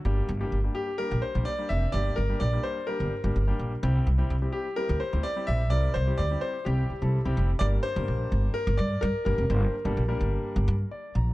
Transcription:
X:1
M:4/4
L:1/16
Q:1/4=127
K:Gdor
V:1 name="Grand piano"
z6 G2 B2 c2 d2 e2 | d2 B2 d2 c2 B6 z2 | z6 G2 B2 c2 d2 e2 | d2 c2 d2 c2 G6 z2 |
d2 c6 B2 d2 B2 B2- | B6 z8 z2 |]
V:2 name="Grand piano"
[G,B,DG]2 z [G,B,DG] z [G,B,DG]2 z [G,B,DG]2 z [G,B,DG] z [G,B,DG]2 z | [G,B,DG]2 z [G,B,DG] z [G,B,DG]2 z [G,B,DG]2 z [G,B,DG] z [G,B,DG]2 z | [G,CEG]2 z [G,CEG] z [G,CEG]2 z [G,CEG]2 z [G,CEG] z [G,CEG]2 z | [G,CEB]2 z [G,CEG] z [G,CEG]2 z [G,CEG]2 z [G,CEA] z [G,CEG]2 z |
[G,B,DGB]2 z [G,B,DGB]4- [G,B,DGB] z6 [G,B,DGB] z | [G,B,DGc]2 z [G,B,DGA] z [G,B,DGB]4- [G,B,DGB] z2 d2 b2 |]
V:3 name="Upright bass" clef=bass
G,,,2 G,,,2 G,,,2 z3 B,,, z B,,, z2 F,,,2 | G,,,2 G,,,2 B,,,2 z3 G,,, z G,,, G,,,2 B,,,2 | C,,2 C,,2 C,,2 z3 D,, z D,, z2 B,,,2 | C,,2 C,,2 D,,2 z2 C,,2 z C,,2 C,, F,,,2 |
G,,,2 z G,,, B,,,2 G,,,2 z G,,, G,,2 G,, z G,,, F,,, | G,,,2 z G,,, B,,,2 G,,,2 z G,,, G,,2 z2 B,,,2 |]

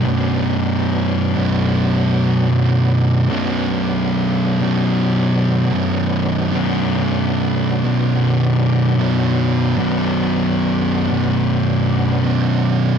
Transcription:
X:1
M:4/4
L:1/8
Q:"Swing" 1/4=74
K:Bm
V:1 name="Tonewheel organ"
[F,B,D]8- | [F,B,D]8- | [F,B,D]8- | [F,B,D]8 |]
V:2 name="Distorted electric guitar" clef=bass
[B,,,F,,B,,]8 | [B,,,F,,B,,]8 | [B,,,F,,B,,]8 | [B,,,F,,B,,]8 |]
V:3 name="Distorted electric guitar" clef=bass
[B,,,F,,B,,]3 [B,,,F,,B,,]3 [B,,,F,,B,,]2 | [B,,,F,,B,,]3 [B,,,F,,B,,]3 [B,,,F,,B,,]2 | [B,,,F,,B,,]3 [B,,,F,,B,,]3 [B,,,F,,B,,]2 | [B,,,F,,B,,]3 [B,,,F,,B,,]3 [B,,,F,,B,,]2 |]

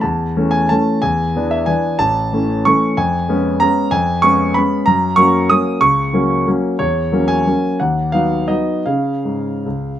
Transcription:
X:1
M:3/4
L:1/8
Q:1/4=184
K:A
V:1 name="Grand piano"
a3 g a2 | g3 e g2 | a4 c'2 | [K:F#] g4 a2 |
g2 c'2 b2 | a2 c'2 d'2 | c'3 z3 | c3 g3 |
f2 e2 d2 | e6 |]
V:2 name="Grand piano"
E,,2 [E,A,C]2 [E,A,C]2 | E,,2 [E,B,D]2 [E,B,D]2 | A,,,2 [E,A,C]2 [E,A,C]2 | [K:F#] E,,2 [G,B,C]2 [G,B,C]2 |
E,,2 [G,B,C]2 [G,B,C]2 | F,,2 [F,A,C]2 [F,A,C]2 | C,,2 [F,A,C]2 [F,A,C]2 | =E,,2 [F,A,C]2 [F,A,C]2 |
D,,2 [F,B,D]2 [F,B,D]2 | [C,CG]2 G,,2 C,,2 |]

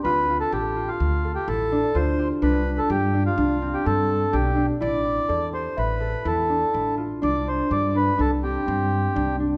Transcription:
X:1
M:5/4
L:1/16
Q:1/4=125
K:C
V:1 name="Celesta"
c'2 z2 a8- a2 z6 | z16 z4 | z4 d4 e8- e2 z2 | z16 z4 |]
V:2 name="Accordion"
B3 A G3 F4 G A4 c3 z | B3 A G3 F4 G A4 G3 z | d6 c2 B4 A6 z2 | d2 c2 d2 B2 A2 G8 z2 |]
V:3 name="Harp"
F2 F2 A2 F4 A2 E2 D2 F2 G2 | D4 G2 D2 D2 C2 C4 D2 D2 | E2 E2 A2 G4 A2 E2 D2 E2 F2 | D4 G2 D2 D2 C2 C4 D2 D2 |]
V:4 name="Upright bass" clef=bass
D,,4 A,,,4 D,,4 A,,,4 D,,4 | C,,4 G,,4 C,,4 G,,4 B,,,4 | A,,,4 E,,4 A,,,4 E,,4 A,,,4 | C,,4 G,,4 C,,4 G,,4 C,,4 |]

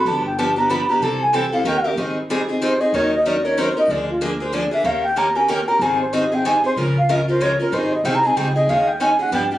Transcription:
X:1
M:3/4
L:1/16
Q:"Swing" 1/4=188
K:C
V:1 name="Flute"
a2 g2 a2 _b2 =b2 _b2 | a2 _a2 g2 f2 g3 z | [K:Ab] z8 c2 e2 | d2 e2 =d2 _d2 c2 e2 |
=d2 F2 A2 c2 d2 _f2 | f2 g2 b2 a2 g2 b2 | a2 c2 e2 g2 a2 c2 | z2 f2 e2 c2 d2 B2 |
c2 e2 (3g2 b2 a2 g2 e2 | f2 g2 a2 _g2 =g2 g2 |]
V:2 name="Steel-string acoustic guitar"
[D,F,B,DG]2 z2 [D,F,B,DG]2 [B,DG]2 [D,F,B,DG]2 [B,DG]2 | [C,E,G,CEA]2 z2 [C,E,G,CEA]2 [G,CEA]2 [_E,_B,_DG_B]2 [DGB]2 | [K:Ab] [E,G,CEA]2 z2 [E,G,CEA]2 [CEA]2 [E,G,CEA]2 [CEA]2 | [E,_G,DEB]2 z2 [E,G,DEB]2 [DEB]2 [E,G,DEB]2 [DEB]2 |
[=D,F,B,=DA]2 z2 [D,F,B,DA]2 [B,DA]2 [D,F,B,DA]2 [B,DA]2 | [E,B,DGB]2 z2 [E,B,DGB]2 [DGB]2 [E,B,DGB]2 [DGB]2 | [E,G,CEA]2 z2 [E,G,CEA]2 [CEA]2 [E,G,CEA]2 [CEA]2 | [D,F,A,DFB]2 z2 [D,F,A,DFB]2 [A,DFB]2 [D,F,A,DFB]2 [A,DFB]2 |
[E,G,CEA]2 z2 [E,G,CEA]2 [CEA]2 [E,G,CEA]2 [CEA]2 | [E,A,DEA]2 z2 [E,A,DEA]2 [DEA]2 [=D,F,=B,=DG]2 [B,DG]2 |]
V:3 name="Upright bass" clef=bass
G,,,12 | C,,8 _E,,4 | [K:Ab] A,,,12 | E,,12 |
=D,,12 | E,,12 | A,,,12 | D,,12 |
A,,,4 C,,4 D,,4 | E,,8 G,,4 |]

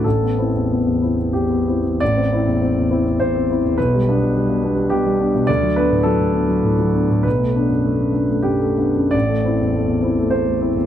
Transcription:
X:1
M:3/4
L:1/16
Q:1/4=102
K:Ador
V:1 name="Grand piano"
A8 G4 | d8 c4 | B6 z2 G4 | d2 B2 A8 |
B8 G4 | d8 c4 |]
V:2 name="Grand piano"
A,,, B, [CE] E,, B, E,, [CE] B, E,, B, [CE] E,, | A,,, C [CE] E,, C E,, [CE] C E,, C [CE] E,, | B,,, G, [B,D] B,, G, B,, [B,D] G, B,, G, [B,D] B,, | D,, F, [B,D] A,, F, A,, [B,D] F, A,, F, [B,D] A,, |
B,,, A, [B,D] F,, A, F,, [B,D] A, F,, A, [B,D] F,, | A,,, A, [CE] E,, A, E,, [CE] A, E,, A, [CE] E,, |]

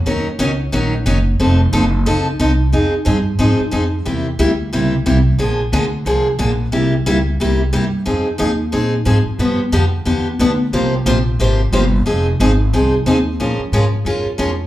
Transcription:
X:1
M:4/4
L:1/8
Q:"Swing" 1/4=180
K:Fphr
V:1 name="Steel-string acoustic guitar"
[E,G,DEB] z [E,G,DEB] z [E,G,DEB] z [E,G,DEB] z | [F,CE=A] z [F,CEA] z [F,CEA] z [F,CEA] z | [K:Fm] [F,CEA] z [F,CEA] z [F,CEA] z [F,CEA] z | [C,G,B,=EG] z [C,G,B,EG] z [C,G,B,EG] z [C,G,B,EG] z |
[=D,F,B,=DA] z [D,F,B,DA] z [D,F,B,DA] z [D,F,B,DA] z | [C,G,B,=EG] z [C,G,B,EG] z [C,G,B,EG] z [C,G,B,EG] z | [F,CEA] z [F,CEA] z [F,CEA] z [F,CEA] z | [=D,F,=B,=DG] z [D,F,B,DG] z [D,F,B,DG] z [D,F,B,DG] z |
[C,F,B,FGc] z [C,F,B,FGc] z [C,F,B,FGc] z [C,F,B,FGc] z | [F,CEA] z [F,CEA] z [F,CEA] z [F,CEA] z | [K:Bbm] [F,A,DFB] z [F,A,DFB] z [F,A,DFB] z [F,A,DFB] z |]
V:2 name="Upright bass" clef=bass
E,,2 D,,2 B,,,2 G,,,2 | F,,,2 G,,,2 D,,2 C,,2 | [K:Fm] F,,2 G,,2 A,, z F,,2 | =E,,2 =D,,2 _D,,2 C,,2 |
B,,,2 =D,,2 C,,2 B,,,2 | C,,2 D,,2 C,,2 G,,2 | F,,2 E,,2 B,,2 A,, z | G,,2 F,,2 =E,,2 =D,,2 |
C,,2 B,,,2 A,,,2 G,,,2 | F,,,2 A,,,2 C,,2 E,,2 | [K:Bbm] B,, z A,,2 G,, z F,,2 |]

